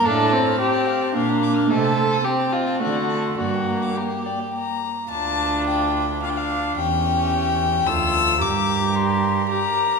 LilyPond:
<<
  \new Staff \with { instrumentName = "Violin" } { \time 3/4 \key g \minor \tempo 4 = 109 f''16 a''16 c'''16 f'''16 c'''16 a''16 f''16 a''16 f''16 bes''16 d'''16 f'''16 | ees''16 a''16 c'''16 ees'''16 c'''16 a''16 ees''16 a''16 d''16 fis''16 a''16 c'''16 | d''16 g''16 bes''16 d'''16 bes''16 g''16 d''16 g''16 bes''4 | \key d \minor a''4 g''4 f''32 g''32 f''8. |
g''2 e'''4 | d'''4 c'''4 bes''4 | }
  \new Staff \with { instrumentName = "Violin" } { \time 3/4 \key g \minor a'4 g'4 d'4 | a'4 g'8 f'8 fis'4 | fis'4 g'4. r8 | \key d \minor f'2 f'4 |
g'2 a'4 | bes'2 bes'4 | }
  \new Staff \with { instrumentName = "Viola" } { \time 3/4 \key g \minor d'8 c'4. bes4 | a4 c'4 a4 | bes2~ bes8 r8 | \key d \minor d'2 d'4 |
cis'2 f'4 | g'2 g'4 | }
  \new Staff \with { instrumentName = "Cello" } { \clef bass \time 3/4 \key g \minor a,4 r4 bes,4 | c4 r4 d4 | g,4 r2 | \key d \minor d,2. |
e,2 d,4 | g,2. | }
>>